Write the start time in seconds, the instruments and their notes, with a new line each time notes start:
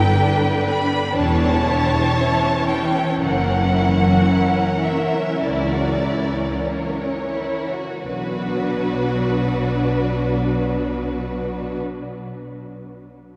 Already playing: viola section D3 E4, violin section G4 B4 G5
0.20 viola section D4, violin section D4
0.45 violin section B3
0.69 violin section G3 B5
0.92 violin section B3
1.15 double bass section E1, cello section E2, viola section E3, violin section G3 C#5 A5
1.42 violin section C#4
1.68 violin section E4
1.93 violin section G4
2.18 viola section C#4, violin section E4
2.45 violin section C#4
2.70 violin section G3 G5
2.97 violin section C#4
3.21 double bass section F#1, cello section F#2, violin section A#3 A#4 F#5
3.49 violin section C#4
3.77 violin section E4
4.04 violin section F#4
4.32 violin section E4
4.59 violin section C#4
4.86 violin section A#3 E5
5.17 violin section C#4
5.43 cello section C#2, double bass section C#2, violin section E4 D5
5.72 violin section F#4
6.02 violin section E4
6.33 violin section C#4
6.67 violin section A#3 C#5
7.00 violin section C#4
7.35 violin section E4
7.70 violin section F#4
8.04 double bass section B1, cello section B2, viola section F#3 D4, violin section F#4 B4